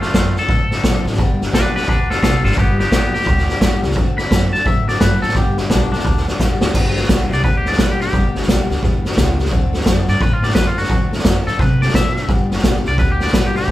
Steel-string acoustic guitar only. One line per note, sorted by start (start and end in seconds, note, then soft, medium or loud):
0.02 0.14 C4 soft
0.02 0.15 D4 medium
0.02 0.14 A4 medium
0.14 0.36 D3 medium
0.14 0.36 F#3 medium
0.14 0.36 C4 medium
0.14 0.37 D4 medium
0.14 0.35 A4 loud
0.36 0.50 C4 soft
0.36 0.50 D4 soft
0.36 0.49 A4 medium
0.49 0.71 F#3 medium
0.49 0.72 C4 medium
0.49 0.72 D4 medium
0.72 0.86 C4 soft
0.72 0.85 D4 soft
0.72 0.84 A4 medium
0.86 1.06 D3 medium
0.86 1.07 F#3 loud
0.86 1.07 C4 medium
0.86 1.06 D4 medium
0.86 1.04 A4 loud
1.05 1.20 C4 soft
1.05 1.19 D4 medium
1.05 1.18 A4 medium
1.19 1.40 G2 medium
1.19 1.41 D3 medium
1.19 1.41 G3 loud
1.19 1.41 B3 medium
1.19 1.41 D4 loud
1.19 1.41 G4 loud
1.42 1.54 G3 medium
1.42 1.55 B3 medium
1.42 1.54 D4 medium
1.42 1.54 G4 medium
1.54 1.75 G2 medium
1.54 1.76 D3 medium
1.54 1.76 G3 medium
1.54 1.76 B3 medium
1.54 1.76 D4 medium
1.54 1.74 G4 medium
1.75 1.88 G3 soft
1.75 1.89 B3 soft
1.75 1.89 D4 medium
1.75 1.88 G4 medium
1.90 2.10 G3 medium
1.90 2.11 B3 medium
1.90 2.10 D4 medium
1.90 2.09 G4 medium
2.10 2.23 G3 soft
2.10 2.23 B3 medium
2.10 2.23 D4 medium
2.10 2.23 G4 medium
2.23 2.45 G2 medium
2.23 2.45 D3 medium
2.23 2.45 G3 medium
2.23 2.45 B3 medium
2.23 2.45 D4 medium
2.23 2.44 G4 medium
2.46 2.58 G3 soft
2.46 2.59 B3 medium
2.46 2.58 D4 medium
2.46 2.58 G4 medium
2.58 2.79 G2 medium
2.58 2.80 D3 medium
2.58 2.80 G3 medium
2.58 2.80 B3 medium
2.58 2.80 D4 medium
2.58 2.80 G4 medium
2.81 2.93 G3 soft
2.81 2.94 B3 medium
2.81 2.94 D4 soft
2.81 2.93 G4 medium
2.93 3.14 G2 medium
2.93 3.15 D3 medium
2.93 3.15 G3 medium
2.93 3.15 B3 loud
2.93 3.15 D4 medium
2.93 3.15 G4 loud
3.16 3.26 G3 soft
3.16 3.27 B3 medium
3.16 3.28 G4 medium
3.27 3.49 G3 medium
3.27 3.49 B3 medium
3.27 3.48 D4 medium
3.27 3.47 G4 medium
3.49 3.61 G3 medium
3.49 3.62 B3 medium
3.49 3.62 D4 medium
3.49 3.61 G4 medium
3.61 3.83 G2 medium
3.61 3.83 D3 medium
3.61 3.84 G3 loud
3.61 3.84 B3 loud
3.61 3.84 D4 loud
3.61 3.82 G4 loud
3.83 3.97 B3 medium
3.83 3.97 D4 medium
3.83 3.96 G4 medium
3.87 3.97 G3 medium
3.97 4.18 D3 medium
3.97 4.18 F#3 medium
3.97 4.19 C4 medium
3.97 4.19 D4 medium
3.97 4.17 A4 medium
4.19 4.32 C4 soft
4.19 4.32 D4 soft
4.19 4.31 A4 medium
4.31 4.53 D3 medium
4.31 4.53 F#3 medium
4.31 4.54 C4 medium
4.31 4.54 D4 medium
4.31 4.53 A4 medium
4.54 4.67 C4 medium
4.54 4.67 D4 medium
4.54 4.66 A4 medium
4.66 4.88 F#3 medium
4.66 4.89 C4 medium
4.66 4.89 D4 medium
4.66 4.88 A4 medium
4.89 5.01 C4 soft
4.89 5.02 D4 medium
4.89 5.01 A4 medium
5.02 5.23 D3 medium
5.02 5.23 F#3 medium
5.02 5.23 C4 medium
5.02 5.22 D4 medium
5.02 5.20 A4 medium
5.22 5.36 C4 soft
5.22 5.36 D4 soft
5.22 5.35 A4 medium
5.36 5.57 G2 medium
5.36 5.57 D3 medium
5.36 5.58 G3 medium
5.36 5.58 B3 medium
5.36 5.58 D4 loud
5.36 5.56 G4 medium
5.58 5.70 G3 soft
5.58 5.71 B3 soft
5.58 5.71 D4 medium
5.58 5.70 G4 medium
5.71 5.92 G2 medium
5.71 5.92 D3 medium
5.71 5.92 G3 medium
5.71 5.93 B3 medium
5.71 5.92 D4 medium
5.71 5.91 G4 medium
5.92 6.04 G3 soft
5.92 6.05 B3 medium
5.92 6.05 D4 medium
5.92 6.05 G4 medium
6.05 6.27 G3 medium
6.05 6.27 B3 medium
6.05 6.27 D4 medium
6.05 6.26 G4 medium
6.27 6.39 G3 soft
6.27 6.40 B3 medium
6.27 6.40 D4 medium
6.27 6.40 G4 medium
6.40 6.61 G2 medium
6.40 6.62 D3 medium
6.40 6.62 G3 medium
6.40 6.62 B3 medium
6.40 6.62 D4 loud
6.40 6.60 G4 loud
6.61 6.75 G3 soft
6.61 6.75 B3 medium
6.61 6.75 D4 medium
6.61 6.74 G4 medium
6.76 6.97 G2 loud
6.76 6.97 D3 loud
6.76 6.97 G3 loud
6.76 6.97 B3 medium
6.76 6.96 D4 loud
6.76 6.95 G4 loud
6.96 7.09 G3 medium
6.96 7.09 B3 medium
6.96 7.10 D4 medium
6.96 7.09 G4 medium
7.09 7.31 G2 loud
7.09 7.31 D3 loud
7.09 7.31 G3 medium
7.09 7.31 B3 medium
7.09 7.31 D4 loud
7.09 7.30 G4 loud
7.31 7.43 G3 soft
7.31 7.44 B3 medium
7.31 7.44 D4 medium
7.31 7.44 G4 medium
7.44 7.66 G3 medium
7.44 7.66 B3 medium
7.44 7.66 D4 medium
7.44 7.65 G4 medium
7.66 7.79 G3 medium
7.66 7.80 B3 soft
7.66 7.79 D4 soft
7.66 7.78 G4 medium
7.79 8.00 G2 medium
7.79 8.01 D3 medium
7.79 8.01 G3 medium
7.79 8.01 B3 medium
7.79 8.01 D4 medium
7.79 8.00 G4 medium
8.03 8.15 G3 soft
8.03 8.15 B3 medium
8.03 8.14 D4 medium
8.15 8.36 G2 medium
8.15 8.36 D3 medium
8.15 8.36 G3 medium
8.15 8.36 B3 medium
8.15 8.36 D4 medium
8.15 8.36 G4 medium
8.37 8.49 G3 soft
8.37 8.50 B3 medium
8.37 8.49 D4 medium
8.37 8.49 G4 medium
8.49 8.70 G2 loud
8.49 8.71 D3 medium
8.49 8.71 G3 loud
8.49 8.71 B3 loud
8.49 8.71 D4 loud
8.49 8.70 G4 loud
8.71 8.82 G3 soft
8.71 8.84 B3 medium
8.71 8.84 D4 medium
8.71 8.83 G4 medium
8.83 9.05 G3 medium
8.83 9.06 B3 medium
8.83 9.05 D4 medium
8.83 9.04 G4 medium
9.05 9.17 G3 medium
9.05 9.18 B3 medium
9.05 9.18 D4 medium
9.05 9.17 G4 medium
9.17 9.39 G2 medium
9.17 9.39 D3 medium
9.17 9.39 G3 medium
9.17 9.40 B3 medium
9.17 9.39 D4 medium
9.17 9.38 G4 loud
9.39 9.52 G3 medium
9.39 9.52 B3 medium
9.39 9.52 D4 medium
9.39 9.52 G4 medium
9.51 9.73 D3 loud
9.51 9.74 F#3 medium
9.51 9.74 C4 loud
9.51 9.74 D4 loud
9.51 9.72 A4 loud
9.73 9.84 C4 medium
9.73 9.86 D4 medium
9.73 9.86 A4 medium
9.84 10.07 D3 medium
9.84 10.08 F#3 loud
9.84 10.08 C4 medium
9.84 10.07 D4 loud
9.84 10.06 A4 loud
10.07 10.20 C4 soft
10.07 10.21 D4 medium
10.07 10.20 A4 medium
10.20 10.42 F#3 medium
10.20 10.43 C4 medium
10.20 10.43 D4 medium
10.20 10.41 A4 medium
10.42 10.55 C4 soft
10.42 10.55 D4 medium
10.42 10.56 A4 medium
10.55 10.77 D3 medium
10.55 10.77 F#3 medium
10.55 10.78 C4 medium
10.55 10.77 D4 medium
10.55 10.75 A4 medium
10.76 10.90 C4 soft
10.76 10.90 D4 medium
10.76 10.90 A4 medium
10.90 11.12 D3 medium
10.90 11.12 F#3 medium
10.90 11.13 C4 medium
10.90 11.12 D4 medium
10.90 11.09 A4 medium
11.11 11.25 D4 medium
11.11 11.24 A4 medium
11.15 11.25 C4 soft
11.25 11.47 D3 medium
11.25 11.47 F#3 loud
11.25 11.47 C4 loud
11.25 11.46 D4 loud
11.25 11.44 A4 loud
11.45 11.59 C4 soft
11.45 11.59 D4 medium
11.45 11.59 A4 medium
11.58 11.81 F#3 medium
11.58 11.82 C4 medium
11.58 11.82 D4 medium
11.58 11.81 A4 medium
11.82 11.94 C4 medium
11.82 11.95 D4 medium
11.82 11.95 A4 medium
11.94 12.16 D3 medium
11.94 12.16 F#3 medium
11.94 12.17 C4 medium
11.94 12.16 D4 medium
11.94 12.14 A4 medium
12.15 12.30 C4 soft
12.15 12.29 D4 soft
12.15 12.28 A4 medium
12.28 12.50 G2 medium
12.28 12.51 D3 medium
12.28 12.51 G3 medium
12.28 12.51 B3 medium
12.28 12.50 D4 medium
12.28 12.49 G4 loud
12.50 12.63 G3 medium
12.50 12.63 B3 medium
12.50 12.63 D4 medium
12.50 12.63 G4 medium
12.63 12.85 G2 medium
12.63 12.86 D3 loud
12.63 12.86 G3 medium
12.63 12.86 B3 medium
12.63 12.85 D4 loud
12.63 12.84 G4 loud
12.85 12.98 G3 soft
12.85 12.99 B3 soft
12.85 12.99 D4 medium
12.85 12.98 G4 medium
12.99 13.20 G3 medium
12.99 13.21 B3 medium
12.99 13.20 D4 medium
12.99 13.19 G4 medium
13.20 13.33 G3 medium
13.20 13.34 B3 medium
13.20 13.34 D4 medium
13.20 13.33 G4 medium
13.34 13.55 G2 medium
13.34 13.56 D3 medium
13.34 13.56 G3 medium
13.34 13.56 B3 medium
13.34 13.55 D4 loud
13.34 13.54 G4 loud
13.55 13.67 G3 soft
13.55 13.68 B3 medium
13.55 13.68 D4 medium
13.55 13.68 G4 medium
13.68 13.71 G2 medium
13.68 13.71 D3 medium